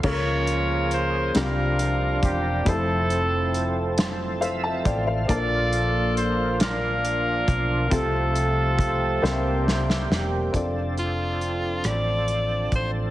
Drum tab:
CC |x-----------|------------|------------|------------|
HH |--x-x-x-x-x-|x-x-x-x-x-x-|x-x-x-x-x-x-|x-x-x-------|
SD |------o-----|------o-----|------o-----|------o-ooo-|
BD |o---------o-|o---------o-|o---------o-|o---o-------|

CC |------------|
HH |x-x-x-x-x-x-|
SD |------r-----|
BD |o---------o-|